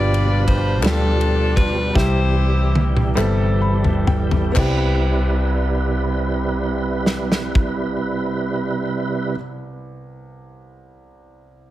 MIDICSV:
0, 0, Header, 1, 6, 480
1, 0, Start_track
1, 0, Key_signature, 0, "major"
1, 0, Tempo, 733496
1, 1273, Time_signature, 6, 3, 24, 8
1, 1273, Tempo, 803213
1, 1753, Tempo, 864553
1, 2233, Tempo, 947867
1, 2713, Tempo, 996678
1, 6154, End_track
2, 0, Start_track
2, 0, Title_t, "Saxophone section"
2, 0, Program_c, 0, 65
2, 0, Note_on_c, 0, 65, 84
2, 0, Note_on_c, 0, 71, 80
2, 0, Note_on_c, 0, 74, 98
2, 280, Note_off_c, 0, 74, 0
2, 312, Note_on_c, 0, 72, 106
2, 520, Note_off_c, 0, 71, 0
2, 522, Note_off_c, 0, 65, 0
2, 543, Note_off_c, 0, 72, 0
2, 546, Note_on_c, 0, 69, 94
2, 554, Note_on_c, 0, 65, 71
2, 557, Note_on_c, 0, 62, 76
2, 1000, Note_off_c, 0, 69, 0
2, 1023, Note_on_c, 0, 71, 103
2, 1255, Note_off_c, 0, 65, 0
2, 1256, Note_off_c, 0, 62, 0
2, 1273, Note_off_c, 0, 71, 0
2, 1281, Note_on_c, 0, 72, 98
2, 1288, Note_on_c, 0, 67, 66
2, 1289, Note_on_c, 0, 64, 61
2, 1814, Note_off_c, 0, 72, 0
2, 1972, Note_off_c, 0, 67, 0
2, 1973, Note_off_c, 0, 64, 0
2, 6154, End_track
3, 0, Start_track
3, 0, Title_t, "Grand piano"
3, 0, Program_c, 1, 0
3, 0, Control_c, 1, 64, 127
3, 0, Note_on_c, 1, 43, 62
3, 0, Note_on_c, 1, 55, 82
3, 0, Note_on_c, 1, 59, 75
3, 0, Note_on_c, 1, 62, 74
3, 0, Note_on_c, 1, 65, 76
3, 0, Note_on_c, 1, 67, 92
3, 499, Note_off_c, 1, 55, 0
3, 501, Note_off_c, 1, 62, 0
3, 502, Note_off_c, 1, 65, 0
3, 503, Note_off_c, 1, 67, 0
3, 516, Note_off_c, 1, 43, 0
3, 521, Note_off_c, 1, 59, 0
3, 539, Note_on_c, 1, 55, 72
3, 540, Note_on_c, 1, 59, 70
3, 543, Note_on_c, 1, 62, 71
3, 544, Note_on_c, 1, 65, 66
3, 551, Note_on_c, 1, 67, 82
3, 1229, Note_off_c, 1, 55, 0
3, 1229, Note_off_c, 1, 59, 0
3, 1231, Note_off_c, 1, 62, 0
3, 1232, Note_off_c, 1, 65, 0
3, 1235, Note_off_c, 1, 67, 0
3, 1264, Note_on_c, 1, 55, 74
3, 1273, Note_on_c, 1, 48, 59
3, 1273, Note_on_c, 1, 60, 76
3, 1277, Note_on_c, 1, 64, 78
3, 1278, Note_on_c, 1, 67, 91
3, 1281, Control_c, 1, 64, 0
3, 1379, Control_c, 1, 64, 127
3, 1942, Note_off_c, 1, 55, 0
3, 1946, Note_off_c, 1, 60, 0
3, 1948, Note_off_c, 1, 64, 0
3, 1948, Note_off_c, 1, 67, 0
3, 1965, Note_off_c, 1, 48, 0
3, 1977, Note_on_c, 1, 55, 91
3, 1979, Note_on_c, 1, 59, 82
3, 1983, Note_on_c, 1, 60, 79
3, 1987, Note_on_c, 1, 64, 75
3, 1987, Note_on_c, 1, 69, 100
3, 2234, Note_on_c, 1, 83, 76
3, 2451, Note_off_c, 1, 83, 0
3, 2466, Note_on_c, 1, 79, 67
3, 2664, Note_off_c, 1, 55, 0
3, 2665, Note_off_c, 1, 59, 0
3, 2667, Note_off_c, 1, 60, 0
3, 2669, Note_off_c, 1, 64, 0
3, 2669, Note_off_c, 1, 69, 0
3, 2692, Note_on_c, 1, 59, 83
3, 2695, Note_off_c, 1, 79, 0
3, 2700, Note_on_c, 1, 60, 69
3, 2710, Note_on_c, 1, 36, 78
3, 2714, Note_on_c, 1, 64, 73
3, 2719, Control_c, 1, 64, 0
3, 2725, Note_on_c, 1, 67, 89
3, 2810, Control_c, 1, 64, 127
3, 4996, Note_off_c, 1, 59, 0
3, 5004, Note_off_c, 1, 60, 0
3, 5013, Note_off_c, 1, 36, 0
3, 5016, Note_off_c, 1, 64, 0
3, 5028, Note_off_c, 1, 67, 0
3, 6154, End_track
4, 0, Start_track
4, 0, Title_t, "Tonewheel organ"
4, 0, Program_c, 2, 16
4, 0, Note_on_c, 2, 47, 60
4, 0, Note_on_c, 2, 53, 64
4, 0, Note_on_c, 2, 55, 61
4, 0, Note_on_c, 2, 62, 57
4, 0, Note_on_c, 2, 67, 78
4, 1250, Note_off_c, 2, 53, 0
4, 1251, Note_off_c, 2, 62, 0
4, 1254, Note_off_c, 2, 47, 0
4, 1254, Note_off_c, 2, 67, 0
4, 1257, Note_off_c, 2, 55, 0
4, 1272, Note_on_c, 2, 67, 78
4, 1276, Note_on_c, 2, 52, 75
4, 1281, Note_on_c, 2, 48, 58
4, 1281, Note_on_c, 2, 55, 70
4, 2692, Note_off_c, 2, 67, 0
4, 2693, Note_off_c, 2, 52, 0
4, 2696, Note_off_c, 2, 48, 0
4, 2696, Note_off_c, 2, 55, 0
4, 2720, Note_on_c, 2, 55, 78
4, 2721, Note_on_c, 2, 48, 77
4, 2722, Note_on_c, 2, 64, 81
4, 2722, Note_on_c, 2, 71, 104
4, 5023, Note_off_c, 2, 55, 0
4, 5024, Note_off_c, 2, 48, 0
4, 5025, Note_off_c, 2, 64, 0
4, 5025, Note_off_c, 2, 71, 0
4, 6154, End_track
5, 0, Start_track
5, 0, Title_t, "Fingered electric bass"
5, 0, Program_c, 3, 33
5, 0, Note_on_c, 3, 31, 107
5, 541, Note_off_c, 3, 31, 0
5, 541, Note_on_c, 3, 38, 97
5, 1248, Note_off_c, 3, 38, 0
5, 1279, Note_on_c, 3, 36, 107
5, 1968, Note_off_c, 3, 36, 0
5, 1987, Note_on_c, 3, 31, 91
5, 2692, Note_off_c, 3, 31, 0
5, 2716, Note_on_c, 3, 36, 95
5, 5019, Note_off_c, 3, 36, 0
5, 6154, End_track
6, 0, Start_track
6, 0, Title_t, "Drums"
6, 92, Note_on_c, 9, 51, 47
6, 158, Note_off_c, 9, 51, 0
6, 312, Note_on_c, 9, 36, 93
6, 314, Note_on_c, 9, 51, 49
6, 378, Note_off_c, 9, 36, 0
6, 380, Note_off_c, 9, 51, 0
6, 545, Note_on_c, 9, 39, 88
6, 552, Note_on_c, 9, 51, 77
6, 562, Note_on_c, 9, 38, 105
6, 610, Note_off_c, 9, 39, 0
6, 617, Note_off_c, 9, 51, 0
6, 627, Note_off_c, 9, 38, 0
6, 791, Note_on_c, 9, 51, 45
6, 856, Note_off_c, 9, 51, 0
6, 1027, Note_on_c, 9, 36, 100
6, 1032, Note_on_c, 9, 51, 48
6, 1093, Note_off_c, 9, 36, 0
6, 1097, Note_off_c, 9, 51, 0
6, 1279, Note_on_c, 9, 36, 112
6, 1291, Note_on_c, 9, 38, 64
6, 1338, Note_off_c, 9, 36, 0
6, 1351, Note_off_c, 9, 38, 0
6, 1756, Note_on_c, 9, 48, 84
6, 1812, Note_off_c, 9, 48, 0
6, 1874, Note_on_c, 9, 47, 70
6, 1929, Note_off_c, 9, 47, 0
6, 1991, Note_on_c, 9, 39, 89
6, 2047, Note_off_c, 9, 39, 0
6, 2350, Note_on_c, 9, 43, 86
6, 2401, Note_off_c, 9, 43, 0
6, 2466, Note_on_c, 9, 43, 114
6, 2517, Note_off_c, 9, 43, 0
6, 2588, Note_on_c, 9, 43, 100
6, 2638, Note_off_c, 9, 43, 0
6, 2711, Note_on_c, 9, 39, 82
6, 2715, Note_on_c, 9, 36, 116
6, 2716, Note_on_c, 9, 49, 89
6, 2759, Note_off_c, 9, 39, 0
6, 2763, Note_off_c, 9, 36, 0
6, 2764, Note_off_c, 9, 49, 0
6, 3918, Note_on_c, 9, 38, 66
6, 3966, Note_off_c, 9, 38, 0
6, 4040, Note_on_c, 9, 38, 81
6, 4088, Note_off_c, 9, 38, 0
6, 4154, Note_on_c, 9, 36, 95
6, 4202, Note_off_c, 9, 36, 0
6, 6154, End_track
0, 0, End_of_file